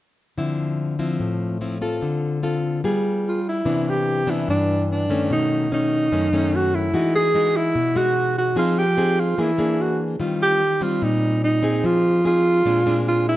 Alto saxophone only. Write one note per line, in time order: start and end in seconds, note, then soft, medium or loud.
3.29 3.46 F4 medium
3.49 3.91 E4 medium
3.90 4.32 G4 medium
4.30 4.49 E4 medium
4.50 4.87 D4 medium
4.92 5.28 D4 medium
5.33 5.69 D#4 medium
5.74 6.57 D#4 medium
6.56 6.76 F#4 medium
6.75 7.14 E4 medium
7.16 7.58 G#4 loud
7.56 7.99 E4 loud
7.97 8.37 F#4 loud
8.38 8.56 F#4 medium
8.59 8.80 F4 medium
8.79 9.21 G4 medium
9.20 9.42 F4 medium
9.41 9.83 E4 medium
9.82 10.01 F#4 medium
10.43 10.85 G4 medium
10.83 11.05 F4 medium
11.04 11.43 D#4 loud
11.44 11.88 D#4 medium
11.86 12.25 F4 medium
12.27 13.03 F4 loud
13.09 13.26 F4 medium
13.29 13.37 E4 loud